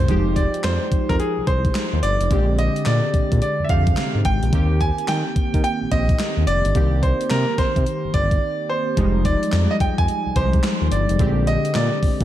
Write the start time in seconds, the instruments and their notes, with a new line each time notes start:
Already playing: grand piano C5
0.08 analog synth bass F1, synth keys F3 G#3 D#4 G4, kick, closed hi-hat
0.36 grand piano D5, kick, closed hi-hat
0.54 closed hi-hat
0.64 analog synth bass F2, grand piano C5, snare, clap, closed hi-hat
0.92 analog synth bass F2, kick, closed hi-hat
1.09 analog synth bass F2, grand piano A#4, kick, closed hi-hat
1.20 grand piano G#4, closed hi-hat
1.37 analog synth bass C2
1.47 analog synth bass C2, grand piano C5, kick, closed hi-hat
1.65 kick, closed hi-hat
1.75 snare, clap, closed hi-hat
1.93 analog synth bass D#2
2.03 analog synth bass G1, grand piano D5, closed hi-hat
2.21 analog synth bass F1, closed hi-hat
2.30 analog synth bass A#1, synth keys D3 G#3 C4 G4, kick, closed hi-hat
2.59 grand piano D#5, closed hi-hat
2.76 closed hi-hat
2.85 analog synth bass A#2, grand piano D5, snare, clap, closed hi-hat
3.14 analog synth bass A#2, kick, closed hi-hat
3.32 analog synth bass A#2, kick, closed hi-hat
3.42 grand piano D5, closed hi-hat
3.60 analog synth bass F2
3.64 grand piano E5
3.69 analog synth bass F2, synth keys C3 G#3 C4 G4, grand piano F5, kick, closed hi-hat
3.76 synth keys D3
3.87 kick, closed hi-hat
3.97 snare, clap, closed hi-hat
4.15 analog synth bass G#2
4.25 analog synth bass G#1, grand piano G5, kick, closed hi-hat
4.43 analog synth bass A#1, closed hi-hat
4.53 analog synth bass D#2, synth keys D#3 A#3 C4 G4, kick, closed hi-hat
4.81 grand piano G#5, kick, closed hi-hat
4.98 closed hi-hat
5.08 analog synth bass D#3, grand piano G5, snare, clap, closed hi-hat
5.36 analog synth bass D#3, kick, closed hi-hat
5.54 analog synth bass D#3, kick, closed hi-hat
5.64 grand piano G5, closed hi-hat
5.81 analog synth bass A#1
5.91 analog synth bass A#1, synth keys D#3 A#3 C4 G4, grand piano D#5, kick, closed hi-hat
6.09 kick, closed hi-hat
6.19 snare, clap, closed hi-hat
6.37 analog synth bass D#2
6.47 analog synth bass F1, grand piano D5, closed hi-hat
6.65 analog synth bass G1, closed hi-hat
6.75 analog synth bass C2, synth keys D#3 A#3 C4 G4, kick, closed hi-hat
7.03 grand piano C5, kick, closed hi-hat
7.21 closed hi-hat
7.30 analog synth bass C3, grand piano A#4, snare, clap, closed hi-hat
7.58 analog synth bass C3, grand piano C5, kick, snare, closed hi-hat
7.76 analog synth bass C3, kick, closed hi-hat
7.86 closed hi-hat
8.04 analog synth bass G1
8.14 analog synth bass G1, grand piano D5, kick, closed hi-hat
8.31 kick, closed hi-hat
8.70 grand piano C5
8.97 analog synth bass F1, synth keys F3 G3 G#3 D#4, kick, closed hi-hat
9.25 grand piano D5, kick, closed hi-hat
9.43 closed hi-hat
9.52 analog synth bass F2, snare, clap, closed hi-hat
9.71 grand piano D#5
9.80 analog synth bass F2, grand piano G5, kick, closed hi-hat
9.98 analog synth bass F2, grand piano G#5, kick, closed hi-hat
10.08 closed hi-hat
10.26 analog synth bass C2
10.36 analog synth bass C2, synth keys F3 G#3 D#4 G4, grand piano C5, kick, closed hi-hat
10.53 kick, closed hi-hat
10.63 snare, clap, closed hi-hat
10.82 analog synth bass D#2
10.92 analog synth bass G1, grand piano D5, closed hi-hat
11.09 analog synth bass F1, closed hi-hat
11.19 analog synth bass A#1, synth keys D3 G#3 C4 G4, kick, closed hi-hat
11.47 grand piano D#5, closed hi-hat
11.65 closed hi-hat
11.74 analog synth bass A#2, grand piano D5, snare, clap, closed hi-hat
12.03 analog synth bass A#2, kick, open hi-hat
12.21 analog synth bass A#2, kick, closed hi-hat